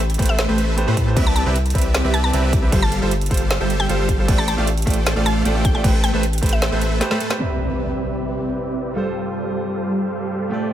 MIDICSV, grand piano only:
0, 0, Header, 1, 2, 480
1, 0, Start_track
1, 0, Tempo, 389610
1, 1437, Time_signature, 4, 2, 24, 8
1, 13219, End_track
2, 0, Start_track
2, 0, Title_t, "Grand piano"
2, 0, Program_c, 0, 0
2, 222, Note_on_c, 0, 57, 91
2, 231, Note_on_c, 0, 67, 83
2, 239, Note_on_c, 0, 71, 85
2, 246, Note_on_c, 0, 72, 99
2, 334, Note_off_c, 0, 57, 0
2, 338, Note_off_c, 0, 67, 0
2, 342, Note_off_c, 0, 71, 0
2, 346, Note_off_c, 0, 72, 0
2, 585, Note_on_c, 0, 57, 85
2, 593, Note_on_c, 0, 67, 78
2, 602, Note_on_c, 0, 71, 78
2, 610, Note_on_c, 0, 72, 95
2, 691, Note_off_c, 0, 57, 0
2, 695, Note_off_c, 0, 67, 0
2, 699, Note_off_c, 0, 71, 0
2, 704, Note_off_c, 0, 72, 0
2, 940, Note_on_c, 0, 57, 104
2, 948, Note_on_c, 0, 67, 92
2, 957, Note_on_c, 0, 71, 94
2, 965, Note_on_c, 0, 72, 114
2, 1047, Note_off_c, 0, 57, 0
2, 1055, Note_off_c, 0, 67, 0
2, 1061, Note_off_c, 0, 71, 0
2, 1065, Note_off_c, 0, 72, 0
2, 1065, Note_on_c, 0, 57, 93
2, 1074, Note_on_c, 0, 67, 83
2, 1081, Note_on_c, 0, 71, 82
2, 1090, Note_on_c, 0, 72, 101
2, 1171, Note_off_c, 0, 57, 0
2, 1175, Note_off_c, 0, 67, 0
2, 1179, Note_off_c, 0, 71, 0
2, 1184, Note_off_c, 0, 72, 0
2, 1305, Note_on_c, 0, 57, 87
2, 1314, Note_on_c, 0, 67, 81
2, 1323, Note_on_c, 0, 71, 78
2, 1331, Note_on_c, 0, 72, 101
2, 1411, Note_off_c, 0, 57, 0
2, 1416, Note_off_c, 0, 67, 0
2, 1420, Note_off_c, 0, 71, 0
2, 1423, Note_on_c, 0, 48, 84
2, 1424, Note_off_c, 0, 72, 0
2, 1430, Note_on_c, 0, 60, 74
2, 1438, Note_on_c, 0, 71, 76
2, 1446, Note_on_c, 0, 76, 89
2, 1534, Note_off_c, 0, 48, 0
2, 1538, Note_off_c, 0, 60, 0
2, 1542, Note_off_c, 0, 71, 0
2, 1546, Note_off_c, 0, 76, 0
2, 1787, Note_on_c, 0, 48, 103
2, 1794, Note_on_c, 0, 60, 89
2, 1803, Note_on_c, 0, 71, 89
2, 1811, Note_on_c, 0, 76, 105
2, 1892, Note_off_c, 0, 48, 0
2, 1896, Note_off_c, 0, 60, 0
2, 1900, Note_off_c, 0, 71, 0
2, 1904, Note_off_c, 0, 76, 0
2, 2141, Note_on_c, 0, 48, 91
2, 2150, Note_on_c, 0, 60, 85
2, 2158, Note_on_c, 0, 71, 88
2, 2166, Note_on_c, 0, 76, 101
2, 2253, Note_off_c, 0, 48, 0
2, 2258, Note_off_c, 0, 60, 0
2, 2262, Note_off_c, 0, 71, 0
2, 2266, Note_off_c, 0, 76, 0
2, 2503, Note_on_c, 0, 48, 84
2, 2512, Note_on_c, 0, 60, 78
2, 2520, Note_on_c, 0, 71, 77
2, 2528, Note_on_c, 0, 76, 98
2, 2610, Note_off_c, 0, 48, 0
2, 2615, Note_off_c, 0, 60, 0
2, 2618, Note_off_c, 0, 71, 0
2, 2622, Note_off_c, 0, 76, 0
2, 2860, Note_on_c, 0, 48, 102
2, 2869, Note_on_c, 0, 60, 95
2, 2876, Note_on_c, 0, 71, 95
2, 2885, Note_on_c, 0, 76, 117
2, 2964, Note_off_c, 0, 48, 0
2, 2973, Note_off_c, 0, 60, 0
2, 2981, Note_off_c, 0, 71, 0
2, 2983, Note_on_c, 0, 48, 92
2, 2985, Note_off_c, 0, 76, 0
2, 2992, Note_on_c, 0, 60, 89
2, 3000, Note_on_c, 0, 71, 84
2, 3008, Note_on_c, 0, 76, 102
2, 3090, Note_off_c, 0, 48, 0
2, 3094, Note_off_c, 0, 60, 0
2, 3098, Note_off_c, 0, 71, 0
2, 3103, Note_off_c, 0, 76, 0
2, 3224, Note_on_c, 0, 48, 92
2, 3231, Note_on_c, 0, 60, 81
2, 3240, Note_on_c, 0, 71, 84
2, 3249, Note_on_c, 0, 76, 98
2, 3331, Note_off_c, 0, 48, 0
2, 3334, Note_off_c, 0, 60, 0
2, 3338, Note_off_c, 0, 71, 0
2, 3339, Note_on_c, 0, 55, 83
2, 3343, Note_off_c, 0, 76, 0
2, 3347, Note_on_c, 0, 65, 73
2, 3356, Note_on_c, 0, 69, 77
2, 3365, Note_on_c, 0, 72, 91
2, 3452, Note_off_c, 0, 55, 0
2, 3456, Note_off_c, 0, 65, 0
2, 3461, Note_off_c, 0, 69, 0
2, 3465, Note_off_c, 0, 72, 0
2, 3703, Note_on_c, 0, 55, 100
2, 3712, Note_on_c, 0, 65, 90
2, 3719, Note_on_c, 0, 69, 89
2, 3728, Note_on_c, 0, 72, 108
2, 3810, Note_off_c, 0, 55, 0
2, 3814, Note_off_c, 0, 65, 0
2, 3818, Note_off_c, 0, 69, 0
2, 3823, Note_off_c, 0, 72, 0
2, 4060, Note_on_c, 0, 55, 94
2, 4067, Note_on_c, 0, 65, 85
2, 4076, Note_on_c, 0, 69, 83
2, 4084, Note_on_c, 0, 72, 98
2, 4173, Note_off_c, 0, 55, 0
2, 4176, Note_off_c, 0, 65, 0
2, 4181, Note_off_c, 0, 69, 0
2, 4185, Note_off_c, 0, 72, 0
2, 4424, Note_on_c, 0, 55, 86
2, 4432, Note_on_c, 0, 65, 78
2, 4441, Note_on_c, 0, 69, 80
2, 4449, Note_on_c, 0, 72, 96
2, 4531, Note_off_c, 0, 55, 0
2, 4535, Note_off_c, 0, 65, 0
2, 4539, Note_off_c, 0, 69, 0
2, 4543, Note_off_c, 0, 72, 0
2, 4780, Note_on_c, 0, 55, 102
2, 4788, Note_on_c, 0, 65, 94
2, 4797, Note_on_c, 0, 69, 94
2, 4805, Note_on_c, 0, 72, 117
2, 4887, Note_off_c, 0, 55, 0
2, 4895, Note_off_c, 0, 65, 0
2, 4901, Note_off_c, 0, 69, 0
2, 4905, Note_off_c, 0, 72, 0
2, 4905, Note_on_c, 0, 55, 88
2, 4913, Note_on_c, 0, 65, 86
2, 4922, Note_on_c, 0, 69, 81
2, 4930, Note_on_c, 0, 72, 102
2, 5011, Note_off_c, 0, 55, 0
2, 5015, Note_off_c, 0, 65, 0
2, 5020, Note_off_c, 0, 69, 0
2, 5023, Note_off_c, 0, 72, 0
2, 5147, Note_on_c, 0, 55, 89
2, 5155, Note_on_c, 0, 65, 84
2, 5163, Note_on_c, 0, 69, 82
2, 5172, Note_on_c, 0, 72, 103
2, 5252, Note_off_c, 0, 55, 0
2, 5252, Note_off_c, 0, 65, 0
2, 5260, Note_off_c, 0, 69, 0
2, 5262, Note_on_c, 0, 57, 82
2, 5264, Note_off_c, 0, 72, 0
2, 5271, Note_on_c, 0, 65, 76
2, 5279, Note_on_c, 0, 67, 74
2, 5287, Note_on_c, 0, 74, 92
2, 5374, Note_off_c, 0, 57, 0
2, 5378, Note_off_c, 0, 65, 0
2, 5382, Note_off_c, 0, 67, 0
2, 5386, Note_off_c, 0, 74, 0
2, 5627, Note_on_c, 0, 57, 105
2, 5634, Note_on_c, 0, 65, 93
2, 5643, Note_on_c, 0, 67, 92
2, 5651, Note_on_c, 0, 74, 110
2, 5732, Note_off_c, 0, 57, 0
2, 5736, Note_off_c, 0, 65, 0
2, 5740, Note_off_c, 0, 67, 0
2, 5744, Note_off_c, 0, 74, 0
2, 5982, Note_on_c, 0, 57, 96
2, 5990, Note_on_c, 0, 65, 88
2, 5998, Note_on_c, 0, 67, 86
2, 6007, Note_on_c, 0, 74, 103
2, 6094, Note_off_c, 0, 57, 0
2, 6098, Note_off_c, 0, 65, 0
2, 6102, Note_off_c, 0, 67, 0
2, 6106, Note_off_c, 0, 74, 0
2, 6347, Note_on_c, 0, 57, 84
2, 6355, Note_on_c, 0, 65, 81
2, 6363, Note_on_c, 0, 67, 81
2, 6371, Note_on_c, 0, 74, 99
2, 6452, Note_off_c, 0, 57, 0
2, 6456, Note_off_c, 0, 65, 0
2, 6460, Note_off_c, 0, 67, 0
2, 6464, Note_off_c, 0, 74, 0
2, 6704, Note_on_c, 0, 57, 99
2, 6712, Note_on_c, 0, 65, 93
2, 6721, Note_on_c, 0, 67, 92
2, 6729, Note_on_c, 0, 74, 112
2, 6809, Note_off_c, 0, 57, 0
2, 6817, Note_off_c, 0, 65, 0
2, 6823, Note_off_c, 0, 67, 0
2, 6827, Note_off_c, 0, 74, 0
2, 6827, Note_on_c, 0, 57, 92
2, 6835, Note_on_c, 0, 65, 87
2, 6843, Note_on_c, 0, 67, 84
2, 6852, Note_on_c, 0, 74, 99
2, 6932, Note_off_c, 0, 57, 0
2, 6936, Note_off_c, 0, 65, 0
2, 6940, Note_off_c, 0, 67, 0
2, 6945, Note_off_c, 0, 74, 0
2, 7069, Note_on_c, 0, 57, 92
2, 7077, Note_on_c, 0, 65, 80
2, 7085, Note_on_c, 0, 67, 85
2, 7093, Note_on_c, 0, 74, 101
2, 7165, Note_off_c, 0, 57, 0
2, 7174, Note_off_c, 0, 67, 0
2, 7177, Note_off_c, 0, 65, 0
2, 7183, Note_on_c, 0, 57, 81
2, 7185, Note_off_c, 0, 74, 0
2, 7192, Note_on_c, 0, 67, 75
2, 7200, Note_on_c, 0, 71, 75
2, 7209, Note_on_c, 0, 72, 93
2, 7294, Note_off_c, 0, 57, 0
2, 7299, Note_off_c, 0, 67, 0
2, 7303, Note_off_c, 0, 71, 0
2, 7307, Note_off_c, 0, 72, 0
2, 7548, Note_on_c, 0, 57, 101
2, 7556, Note_on_c, 0, 67, 88
2, 7564, Note_on_c, 0, 71, 91
2, 7573, Note_on_c, 0, 72, 105
2, 7652, Note_off_c, 0, 57, 0
2, 7657, Note_off_c, 0, 67, 0
2, 7661, Note_off_c, 0, 71, 0
2, 7665, Note_off_c, 0, 72, 0
2, 7902, Note_on_c, 0, 57, 90
2, 7910, Note_on_c, 0, 67, 86
2, 7918, Note_on_c, 0, 71, 83
2, 7927, Note_on_c, 0, 72, 102
2, 8014, Note_off_c, 0, 57, 0
2, 8018, Note_off_c, 0, 67, 0
2, 8022, Note_off_c, 0, 71, 0
2, 8026, Note_off_c, 0, 72, 0
2, 8265, Note_on_c, 0, 57, 82
2, 8274, Note_on_c, 0, 67, 80
2, 8282, Note_on_c, 0, 71, 77
2, 8291, Note_on_c, 0, 72, 95
2, 8371, Note_off_c, 0, 57, 0
2, 8375, Note_off_c, 0, 67, 0
2, 8379, Note_off_c, 0, 71, 0
2, 8384, Note_off_c, 0, 72, 0
2, 8622, Note_on_c, 0, 57, 99
2, 8630, Note_on_c, 0, 67, 93
2, 8638, Note_on_c, 0, 71, 93
2, 8647, Note_on_c, 0, 72, 111
2, 8726, Note_off_c, 0, 57, 0
2, 8736, Note_off_c, 0, 67, 0
2, 8742, Note_off_c, 0, 71, 0
2, 8745, Note_on_c, 0, 57, 92
2, 8746, Note_off_c, 0, 72, 0
2, 8754, Note_on_c, 0, 67, 82
2, 8762, Note_on_c, 0, 71, 79
2, 8770, Note_on_c, 0, 72, 95
2, 8851, Note_off_c, 0, 57, 0
2, 8856, Note_off_c, 0, 67, 0
2, 8859, Note_off_c, 0, 71, 0
2, 8864, Note_off_c, 0, 72, 0
2, 8987, Note_on_c, 0, 57, 90
2, 8995, Note_on_c, 0, 67, 83
2, 9003, Note_on_c, 0, 71, 83
2, 9011, Note_on_c, 0, 72, 97
2, 9090, Note_on_c, 0, 48, 65
2, 9092, Note_off_c, 0, 57, 0
2, 9096, Note_off_c, 0, 67, 0
2, 9100, Note_off_c, 0, 71, 0
2, 9104, Note_off_c, 0, 72, 0
2, 9107, Note_on_c, 0, 60, 60
2, 9123, Note_on_c, 0, 71, 60
2, 9140, Note_on_c, 0, 76, 71
2, 10995, Note_off_c, 0, 48, 0
2, 11004, Note_off_c, 0, 60, 0
2, 11011, Note_on_c, 0, 55, 66
2, 11012, Note_off_c, 0, 71, 0
2, 11020, Note_off_c, 0, 76, 0
2, 11028, Note_on_c, 0, 65, 59
2, 11044, Note_on_c, 0, 69, 61
2, 11061, Note_on_c, 0, 72, 72
2, 12916, Note_off_c, 0, 55, 0
2, 12924, Note_off_c, 0, 65, 0
2, 12929, Note_on_c, 0, 57, 66
2, 12932, Note_off_c, 0, 69, 0
2, 12941, Note_off_c, 0, 72, 0
2, 12946, Note_on_c, 0, 65, 60
2, 12963, Note_on_c, 0, 67, 59
2, 12979, Note_on_c, 0, 74, 74
2, 13219, Note_off_c, 0, 57, 0
2, 13219, Note_off_c, 0, 65, 0
2, 13219, Note_off_c, 0, 67, 0
2, 13219, Note_off_c, 0, 74, 0
2, 13219, End_track
0, 0, End_of_file